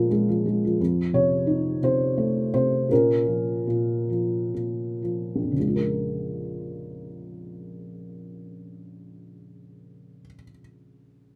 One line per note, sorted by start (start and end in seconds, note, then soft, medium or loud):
0.00 0.81 A#2 medium
0.00 0.29 F3 soft
0.00 0.11 G#3 soft
0.00 0.82 C#4 medium
0.00 0.82 A#4 medium
0.11 0.44 G#3 soft
0.29 0.63 F3 soft
0.46 0.79 G#3 soft
0.65 0.81 F3 soft
0.81 2.87 F2 soft
1.13 1.81 C3 soft
1.13 1.80 C#5 medium
1.47 2.85 D#4 soft
1.82 2.52 C3 soft
1.82 2.50 C5 medium
2.18 2.88 A3 soft
2.54 2.89 C3 soft
2.54 2.92 C5 medium
2.89 3.66 A#2 soft
2.89 4.52 C#4 soft
2.89 4.52 A#4 medium
3.27 4.08 F3 soft
3.67 4.53 A#2 soft
4.10 5.01 F3 soft
4.54 5.53 A#2 soft
5.02 5.54 F3 soft
5.36 10.19 A#1 soft
5.43 10.26 F2 soft
5.52 10.35 C#3 soft
5.60 10.43 G#3 soft
5.68 10.51 F4 soft
5.76 10.59 A#4 soft